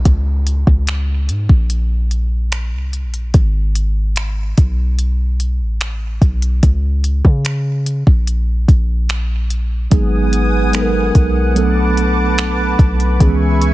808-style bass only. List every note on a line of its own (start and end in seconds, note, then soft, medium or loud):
0.05 0.65 C#2 loud
0.67 1.30 C#2 medium
1.29 1.48 G#2 medium
1.49 2.74 A#1 loud
2.73 3.05 C2 medium
3.04 3.33 A#1 loud
3.34 4.54 G#1 loud
4.58 5.62 B1 loud
5.60 6.19 A1 loud
6.22 6.61 B1 loud
6.63 7.22 C#2 loud
7.25 8.04 C#3 medium
8.07 8.66 A#1 medium
8.68 9.88 A#1 loud
9.92 11.11 G#1 loud
11.15 12.76 B1 medium
12.79 13.19 B1 loud
13.21 13.74 C#2 loud